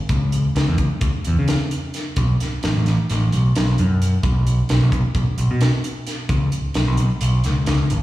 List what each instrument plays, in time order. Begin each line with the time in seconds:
0.09 picked electric bass C#2, kick, closed hi-hat
0.32 closed hi-hat
0.55 picked electric bass C#2, snare, closed hi-hat
0.68 picked electric bass E2
0.78 picked electric bass C#2, kick, closed hi-hat
1.01 picked electric bass C#2, kick, closed hi-hat
1.24 picked electric bass E2, closed hi-hat
1.39 picked electric bass C#3
1.48 snare, closed hi-hat
1.71 closed hi-hat
1.94 snare, closed hi-hat
2.16 picked electric bass B1, kick, closed hi-hat
2.40 snare, closed hi-hat
2.63 picked electric bass A1, snare, closed hi-hat
2.76 picked electric bass A1
2.86 picked electric bass A1, snare, closed hi-hat
3.10 picked electric bass A1, snare, closed hi-hat
3.32 picked electric bass B1, closed hi-hat
3.56 picked electric bass B1, snare, closed hi-hat
3.78 picked electric bass F#2, closed hi-hat
4.02 closed hi-hat
4.23 picked electric bass B1, kick, closed hi-hat
4.47 closed hi-hat
4.69 picked electric bass B1, snare, closed hi-hat
4.83 picked electric bass B1
4.92 picked electric bass B1, kick, closed hi-hat
5.15 picked electric bass B1, kick, closed hi-hat
5.38 picked electric bass B1, closed hi-hat
5.51 picked electric bass B2
5.61 snare, closed hi-hat
5.84 closed hi-hat
6.07 snare, closed hi-hat
6.29 picked electric bass C#2, kick, closed hi-hat
6.52 closed hi-hat
6.74 picked electric bass B1, snare, closed hi-hat
6.88 picked electric bass B1
6.97 picked electric bass B1, closed hi-hat
7.21 picked electric bass B1, closed hi-hat
7.44 picked electric bass C#2, snare, closed hi-hat
7.66 picked electric bass C#2, snare, closed hi-hat
7.90 picked electric bass G#1, closed hi-hat